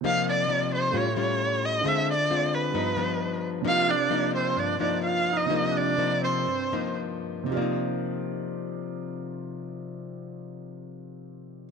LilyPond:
<<
  \new Staff \with { instrumentName = "Erhu" } { \time 4/4 \key c \minor \tempo 4 = 126 f''8 d''4 c''8 cis''8 cis''4 ees''8 | e''8 d''4 b'2 r8 | f''8 d''4 c''8 d''8 d''8 \tuplet 3/2 { f''4 ees''8~ } | ees''8 d''4 c''4. r4 |
r1 | r1 | }
  \new Staff \with { instrumentName = "Grand piano" } { \time 4/4 \key c \minor <c ees' f' g' bes' d''>2 <a eis' g' cis'' bis''>2 | <d f' aes' c'' e''>2 <g f' b' dis'' ais''>2 | <c d' f' g' bes' d''>1 | <c d' f' g' bes' d''>1 |
<c ees' f' g' bes' d''>1~ | <c ees' f' g' bes' d''>1 | }
  \new Staff \with { instrumentName = "Alto flute" } { \time 4/4 \key c \minor r1 | r1 | f'8 d'4 c'8 d'8 d'8 \tuplet 3/2 { f'4 ees'8~ } | ees'8 d'4 c'4. r4 |
r1 | r1 | }
  \new Staff \with { instrumentName = "Nylon-string guitar" } { \time 4/4 \key c \minor << { <f bes ees'>4 <f bes ees'>4 <g cis' eis'>8 <g cis' eis'>4. | <aes c' f'>8 r8 <aes c' f'>4 <f b dis'>8 <f b dis'>4. | <f bes ees'>8 r8 <f bes ees'>4. <f bes ees'>4. | <f bes ees'>4 <f bes ees'>4 r8 <f bes ees'>4. |
<c f bes ees'>1~ | <c f bes ees'>1 | } \\ { c2 a,2 | d2 g,2 | c2 g,2 | c2 g,2 |
r1 | r1 | } >> }
>>